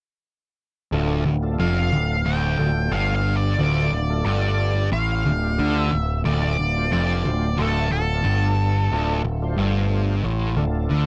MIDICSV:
0, 0, Header, 1, 5, 480
1, 0, Start_track
1, 0, Key_signature, -1, "minor"
1, 0, Tempo, 665927
1, 665, Time_signature, 4, 2, 24, 8
1, 7972, End_track
2, 0, Start_track
2, 0, Title_t, "Lead electric guitar"
2, 0, Program_c, 0, 29
2, 1151, Note_on_c, 0, 77, 95
2, 1628, Note_on_c, 0, 79, 100
2, 1644, Note_off_c, 0, 77, 0
2, 2110, Note_on_c, 0, 77, 96
2, 2123, Note_off_c, 0, 79, 0
2, 2258, Note_off_c, 0, 77, 0
2, 2273, Note_on_c, 0, 77, 93
2, 2424, Note_off_c, 0, 77, 0
2, 2427, Note_on_c, 0, 74, 92
2, 3060, Note_off_c, 0, 74, 0
2, 3069, Note_on_c, 0, 74, 87
2, 3520, Note_off_c, 0, 74, 0
2, 3552, Note_on_c, 0, 77, 90
2, 4158, Note_off_c, 0, 77, 0
2, 4158, Note_on_c, 0, 76, 90
2, 4482, Note_off_c, 0, 76, 0
2, 4508, Note_on_c, 0, 74, 91
2, 4984, Note_off_c, 0, 74, 0
2, 4992, Note_on_c, 0, 74, 83
2, 5468, Note_on_c, 0, 69, 85
2, 5484, Note_off_c, 0, 74, 0
2, 5702, Note_off_c, 0, 69, 0
2, 5710, Note_on_c, 0, 69, 75
2, 6639, Note_off_c, 0, 69, 0
2, 7972, End_track
3, 0, Start_track
3, 0, Title_t, "Tonewheel organ"
3, 0, Program_c, 1, 16
3, 668, Note_on_c, 1, 57, 80
3, 670, Note_on_c, 1, 62, 72
3, 671, Note_on_c, 1, 69, 92
3, 674, Note_on_c, 1, 65, 75
3, 896, Note_off_c, 1, 57, 0
3, 897, Note_off_c, 1, 62, 0
3, 897, Note_off_c, 1, 69, 0
3, 899, Note_off_c, 1, 65, 0
3, 1027, Note_on_c, 1, 62, 65
3, 1029, Note_on_c, 1, 57, 69
3, 1029, Note_on_c, 1, 65, 66
3, 1034, Note_on_c, 1, 69, 77
3, 1561, Note_off_c, 1, 62, 0
3, 1562, Note_off_c, 1, 57, 0
3, 1562, Note_off_c, 1, 65, 0
3, 1565, Note_off_c, 1, 69, 0
3, 1859, Note_on_c, 1, 57, 60
3, 1860, Note_on_c, 1, 62, 63
3, 1861, Note_on_c, 1, 65, 58
3, 1867, Note_on_c, 1, 69, 72
3, 2321, Note_off_c, 1, 57, 0
3, 2322, Note_off_c, 1, 62, 0
3, 2322, Note_off_c, 1, 65, 0
3, 2325, Note_off_c, 1, 69, 0
3, 2587, Note_on_c, 1, 57, 67
3, 2593, Note_on_c, 1, 62, 62
3, 2593, Note_on_c, 1, 65, 64
3, 2595, Note_on_c, 1, 69, 72
3, 2817, Note_off_c, 1, 57, 0
3, 2819, Note_off_c, 1, 62, 0
3, 2820, Note_off_c, 1, 65, 0
3, 2821, Note_off_c, 1, 69, 0
3, 2952, Note_on_c, 1, 57, 72
3, 2954, Note_on_c, 1, 62, 62
3, 2955, Note_on_c, 1, 69, 79
3, 2960, Note_on_c, 1, 65, 61
3, 3484, Note_off_c, 1, 57, 0
3, 3485, Note_off_c, 1, 62, 0
3, 3486, Note_off_c, 1, 69, 0
3, 3488, Note_off_c, 1, 65, 0
3, 3790, Note_on_c, 1, 57, 65
3, 3792, Note_on_c, 1, 62, 62
3, 3794, Note_on_c, 1, 67, 77
3, 3796, Note_on_c, 1, 65, 62
3, 4247, Note_off_c, 1, 57, 0
3, 4248, Note_off_c, 1, 62, 0
3, 4249, Note_off_c, 1, 67, 0
3, 4250, Note_off_c, 1, 65, 0
3, 4502, Note_on_c, 1, 57, 68
3, 4505, Note_on_c, 1, 62, 63
3, 4508, Note_on_c, 1, 65, 65
3, 4509, Note_on_c, 1, 69, 70
3, 4734, Note_off_c, 1, 57, 0
3, 4736, Note_off_c, 1, 62, 0
3, 4737, Note_off_c, 1, 65, 0
3, 4737, Note_off_c, 1, 69, 0
3, 4875, Note_on_c, 1, 62, 66
3, 4877, Note_on_c, 1, 57, 73
3, 4877, Note_on_c, 1, 72, 82
3, 4878, Note_on_c, 1, 65, 64
3, 5405, Note_off_c, 1, 62, 0
3, 5406, Note_off_c, 1, 57, 0
3, 5406, Note_off_c, 1, 65, 0
3, 5406, Note_off_c, 1, 72, 0
3, 5703, Note_on_c, 1, 62, 57
3, 5705, Note_on_c, 1, 57, 64
3, 5706, Note_on_c, 1, 65, 60
3, 5710, Note_on_c, 1, 69, 74
3, 6162, Note_off_c, 1, 62, 0
3, 6163, Note_off_c, 1, 57, 0
3, 6163, Note_off_c, 1, 65, 0
3, 6166, Note_off_c, 1, 69, 0
3, 6432, Note_on_c, 1, 57, 80
3, 6432, Note_on_c, 1, 69, 90
3, 6434, Note_on_c, 1, 62, 77
3, 6434, Note_on_c, 1, 65, 76
3, 6658, Note_off_c, 1, 57, 0
3, 6658, Note_off_c, 1, 65, 0
3, 6658, Note_off_c, 1, 69, 0
3, 6659, Note_off_c, 1, 62, 0
3, 6791, Note_on_c, 1, 62, 78
3, 6792, Note_on_c, 1, 57, 82
3, 6792, Note_on_c, 1, 65, 80
3, 6800, Note_on_c, 1, 72, 92
3, 7321, Note_off_c, 1, 57, 0
3, 7321, Note_off_c, 1, 62, 0
3, 7321, Note_off_c, 1, 65, 0
3, 7325, Note_off_c, 1, 72, 0
3, 7615, Note_on_c, 1, 57, 72
3, 7617, Note_on_c, 1, 65, 73
3, 7620, Note_on_c, 1, 69, 82
3, 7623, Note_on_c, 1, 62, 71
3, 7972, Note_off_c, 1, 57, 0
3, 7972, Note_off_c, 1, 62, 0
3, 7972, Note_off_c, 1, 65, 0
3, 7972, Note_off_c, 1, 69, 0
3, 7972, End_track
4, 0, Start_track
4, 0, Title_t, "Distorted electric guitar"
4, 0, Program_c, 2, 30
4, 663, Note_on_c, 2, 38, 93
4, 896, Note_off_c, 2, 38, 0
4, 905, Note_on_c, 2, 38, 67
4, 1098, Note_off_c, 2, 38, 0
4, 1148, Note_on_c, 2, 41, 93
4, 1381, Note_off_c, 2, 41, 0
4, 1385, Note_on_c, 2, 38, 72
4, 1578, Note_off_c, 2, 38, 0
4, 1626, Note_on_c, 2, 38, 92
4, 1858, Note_off_c, 2, 38, 0
4, 1866, Note_on_c, 2, 38, 70
4, 2059, Note_off_c, 2, 38, 0
4, 2104, Note_on_c, 2, 43, 94
4, 2579, Note_off_c, 2, 43, 0
4, 2585, Note_on_c, 2, 38, 95
4, 2820, Note_off_c, 2, 38, 0
4, 2829, Note_on_c, 2, 38, 74
4, 3021, Note_off_c, 2, 38, 0
4, 3068, Note_on_c, 2, 43, 91
4, 3540, Note_off_c, 2, 43, 0
4, 3543, Note_on_c, 2, 45, 91
4, 3779, Note_off_c, 2, 45, 0
4, 3790, Note_on_c, 2, 38, 75
4, 3981, Note_off_c, 2, 38, 0
4, 4025, Note_on_c, 2, 50, 93
4, 4260, Note_off_c, 2, 50, 0
4, 4265, Note_on_c, 2, 38, 68
4, 4459, Note_off_c, 2, 38, 0
4, 4505, Note_on_c, 2, 38, 99
4, 4740, Note_off_c, 2, 38, 0
4, 4748, Note_on_c, 2, 38, 73
4, 4940, Note_off_c, 2, 38, 0
4, 4985, Note_on_c, 2, 41, 92
4, 5220, Note_off_c, 2, 41, 0
4, 5225, Note_on_c, 2, 38, 67
4, 5418, Note_off_c, 2, 38, 0
4, 5459, Note_on_c, 2, 38, 87
4, 5689, Note_off_c, 2, 38, 0
4, 5698, Note_on_c, 2, 38, 69
4, 5895, Note_off_c, 2, 38, 0
4, 5936, Note_on_c, 2, 43, 100
4, 6414, Note_off_c, 2, 43, 0
4, 6426, Note_on_c, 2, 38, 95
4, 6653, Note_off_c, 2, 38, 0
4, 6661, Note_on_c, 2, 38, 70
4, 6856, Note_off_c, 2, 38, 0
4, 6901, Note_on_c, 2, 43, 88
4, 7375, Note_off_c, 2, 43, 0
4, 7380, Note_on_c, 2, 45, 87
4, 7610, Note_off_c, 2, 45, 0
4, 7613, Note_on_c, 2, 38, 70
4, 7810, Note_off_c, 2, 38, 0
4, 7855, Note_on_c, 2, 50, 91
4, 7972, Note_off_c, 2, 50, 0
4, 7972, End_track
5, 0, Start_track
5, 0, Title_t, "Picked electric bass"
5, 0, Program_c, 3, 34
5, 665, Note_on_c, 3, 26, 78
5, 889, Note_off_c, 3, 26, 0
5, 910, Note_on_c, 3, 26, 72
5, 1132, Note_off_c, 3, 26, 0
5, 1148, Note_on_c, 3, 29, 83
5, 1371, Note_off_c, 3, 29, 0
5, 1391, Note_on_c, 3, 26, 72
5, 1613, Note_off_c, 3, 26, 0
5, 1627, Note_on_c, 3, 26, 86
5, 1851, Note_off_c, 3, 26, 0
5, 1867, Note_on_c, 3, 26, 78
5, 2091, Note_off_c, 3, 26, 0
5, 2102, Note_on_c, 3, 31, 88
5, 2556, Note_off_c, 3, 31, 0
5, 2587, Note_on_c, 3, 26, 82
5, 2811, Note_off_c, 3, 26, 0
5, 2826, Note_on_c, 3, 26, 75
5, 3051, Note_off_c, 3, 26, 0
5, 3067, Note_on_c, 3, 31, 87
5, 3519, Note_off_c, 3, 31, 0
5, 3547, Note_on_c, 3, 33, 86
5, 3771, Note_off_c, 3, 33, 0
5, 3795, Note_on_c, 3, 26, 77
5, 4015, Note_off_c, 3, 26, 0
5, 4033, Note_on_c, 3, 38, 85
5, 4254, Note_off_c, 3, 38, 0
5, 4274, Note_on_c, 3, 26, 78
5, 4495, Note_off_c, 3, 26, 0
5, 4514, Note_on_c, 3, 26, 83
5, 4735, Note_off_c, 3, 26, 0
5, 4751, Note_on_c, 3, 26, 73
5, 4973, Note_off_c, 3, 26, 0
5, 4995, Note_on_c, 3, 29, 85
5, 5215, Note_off_c, 3, 29, 0
5, 5239, Note_on_c, 3, 26, 73
5, 5457, Note_off_c, 3, 26, 0
5, 5471, Note_on_c, 3, 26, 90
5, 5693, Note_off_c, 3, 26, 0
5, 5707, Note_on_c, 3, 26, 76
5, 5930, Note_off_c, 3, 26, 0
5, 5944, Note_on_c, 3, 31, 92
5, 6396, Note_off_c, 3, 31, 0
5, 6428, Note_on_c, 3, 26, 87
5, 6650, Note_off_c, 3, 26, 0
5, 6667, Note_on_c, 3, 26, 75
5, 6889, Note_off_c, 3, 26, 0
5, 6902, Note_on_c, 3, 31, 83
5, 7354, Note_off_c, 3, 31, 0
5, 7386, Note_on_c, 3, 33, 83
5, 7608, Note_off_c, 3, 33, 0
5, 7622, Note_on_c, 3, 26, 74
5, 7846, Note_off_c, 3, 26, 0
5, 7867, Note_on_c, 3, 38, 84
5, 7972, Note_off_c, 3, 38, 0
5, 7972, End_track
0, 0, End_of_file